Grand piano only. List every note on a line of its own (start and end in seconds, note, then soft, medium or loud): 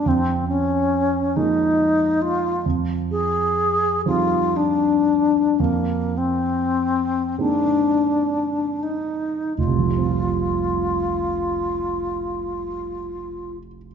0.06 1.31 F2 soft
1.36 2.62 F3 soft
1.36 2.62 G#3 soft
1.36 2.62 A#3 soft
1.36 2.62 D#4 soft
2.66 4.02 F2 soft
4.06 5.55 F3 soft
4.06 5.55 G3 soft
4.06 5.55 C4 soft
4.06 5.55 D#4 soft
5.60 7.34 F2 soft
7.38 9.53 G#3 soft
7.38 9.54 A#3 soft
7.38 9.54 C4 soft
7.38 9.54 D#4 soft
9.58 13.57 F1 soft
9.67 13.66 C2 soft
9.79 13.78 F3 soft
9.88 13.88 G3 soft
9.98 13.95 C4 soft
10.09 13.95 F4 soft